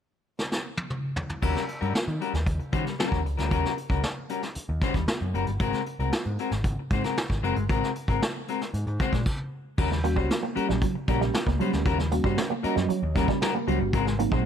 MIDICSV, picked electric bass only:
0, 0, Header, 1, 3, 480
1, 0, Start_track
1, 0, Tempo, 521286
1, 1313, Time_signature, 4, 2, 24, 8
1, 13311, End_track
2, 0, Start_track
2, 0, Title_t, "Picked electric bass"
2, 0, Program_c, 0, 34
2, 1316, Note_on_c, 0, 39, 77
2, 1413, Note_off_c, 0, 39, 0
2, 1675, Note_on_c, 0, 43, 80
2, 1773, Note_off_c, 0, 43, 0
2, 1912, Note_on_c, 0, 51, 82
2, 2011, Note_off_c, 0, 51, 0
2, 2154, Note_on_c, 0, 39, 85
2, 2252, Note_off_c, 0, 39, 0
2, 2271, Note_on_c, 0, 39, 97
2, 2371, Note_off_c, 0, 39, 0
2, 2515, Note_on_c, 0, 51, 73
2, 2613, Note_off_c, 0, 51, 0
2, 2874, Note_on_c, 0, 39, 75
2, 2991, Note_off_c, 0, 39, 0
2, 2991, Note_on_c, 0, 37, 86
2, 3091, Note_off_c, 0, 37, 0
2, 3117, Note_on_c, 0, 38, 91
2, 3214, Note_off_c, 0, 38, 0
2, 3236, Note_on_c, 0, 39, 96
2, 3334, Note_off_c, 0, 39, 0
2, 3591, Note_on_c, 0, 37, 86
2, 3691, Note_off_c, 0, 37, 0
2, 4318, Note_on_c, 0, 39, 92
2, 4416, Note_off_c, 0, 39, 0
2, 4553, Note_on_c, 0, 39, 76
2, 4653, Note_off_c, 0, 39, 0
2, 4798, Note_on_c, 0, 42, 70
2, 4896, Note_off_c, 0, 42, 0
2, 4920, Note_on_c, 0, 30, 77
2, 5017, Note_off_c, 0, 30, 0
2, 5041, Note_on_c, 0, 31, 78
2, 5138, Note_off_c, 0, 31, 0
2, 5159, Note_on_c, 0, 32, 90
2, 5257, Note_off_c, 0, 32, 0
2, 5518, Note_on_c, 0, 36, 89
2, 5617, Note_off_c, 0, 36, 0
2, 5763, Note_on_c, 0, 44, 80
2, 5860, Note_off_c, 0, 44, 0
2, 5999, Note_on_c, 0, 32, 78
2, 6098, Note_off_c, 0, 32, 0
2, 6118, Note_on_c, 0, 32, 91
2, 6217, Note_off_c, 0, 32, 0
2, 6362, Note_on_c, 0, 44, 87
2, 6460, Note_off_c, 0, 44, 0
2, 6722, Note_on_c, 0, 32, 84
2, 6820, Note_off_c, 0, 32, 0
2, 6842, Note_on_c, 0, 30, 82
2, 6940, Note_off_c, 0, 30, 0
2, 6969, Note_on_c, 0, 31, 88
2, 7088, Note_off_c, 0, 31, 0
2, 7088, Note_on_c, 0, 32, 85
2, 7184, Note_off_c, 0, 32, 0
2, 7443, Note_on_c, 0, 32, 81
2, 7541, Note_off_c, 0, 32, 0
2, 8045, Note_on_c, 0, 44, 93
2, 8143, Note_off_c, 0, 44, 0
2, 8166, Note_on_c, 0, 44, 72
2, 8263, Note_off_c, 0, 44, 0
2, 8408, Note_on_c, 0, 46, 67
2, 8505, Note_off_c, 0, 46, 0
2, 9008, Note_on_c, 0, 39, 99
2, 9360, Note_off_c, 0, 39, 0
2, 9360, Note_on_c, 0, 37, 99
2, 9459, Note_off_c, 0, 37, 0
2, 9851, Note_on_c, 0, 34, 92
2, 9945, Note_off_c, 0, 34, 0
2, 10203, Note_on_c, 0, 34, 74
2, 10398, Note_off_c, 0, 34, 0
2, 10560, Note_on_c, 0, 37, 89
2, 10658, Note_off_c, 0, 37, 0
2, 10808, Note_on_c, 0, 38, 89
2, 10902, Note_off_c, 0, 38, 0
2, 10921, Note_on_c, 0, 39, 85
2, 11214, Note_off_c, 0, 39, 0
2, 11275, Note_on_c, 0, 43, 89
2, 11374, Note_off_c, 0, 43, 0
2, 11758, Note_on_c, 0, 42, 98
2, 11855, Note_off_c, 0, 42, 0
2, 11995, Note_on_c, 0, 39, 84
2, 12191, Note_off_c, 0, 39, 0
2, 12596, Note_on_c, 0, 37, 95
2, 12692, Note_off_c, 0, 37, 0
2, 12711, Note_on_c, 0, 31, 89
2, 12809, Note_off_c, 0, 31, 0
2, 12835, Note_on_c, 0, 32, 102
2, 13127, Note_off_c, 0, 32, 0
2, 13185, Note_on_c, 0, 34, 92
2, 13284, Note_off_c, 0, 34, 0
2, 13311, End_track
3, 0, Start_track
3, 0, Title_t, "Muted picked electric bass strokes"
3, 1795, Note_on_c, 9, 29, 38
3, 1887, Note_off_c, 9, 29, 0
3, 4201, Note_on_c, 9, 29, 47
3, 4293, Note_off_c, 9, 29, 0
3, 5641, Note_on_c, 9, 29, 43
3, 5734, Note_off_c, 9, 29, 0
3, 9729, Note_on_c, 9, 29, 40
3, 9822, Note_off_c, 9, 29, 0
3, 10440, Note_on_c, 9, 29, 43
3, 10532, Note_off_c, 9, 29, 0
3, 11639, Note_on_c, 9, 29, 48
3, 11731, Note_off_c, 9, 29, 0
3, 11878, Note_on_c, 9, 29, 49
3, 11970, Note_off_c, 9, 29, 0
3, 13311, End_track
0, 0, End_of_file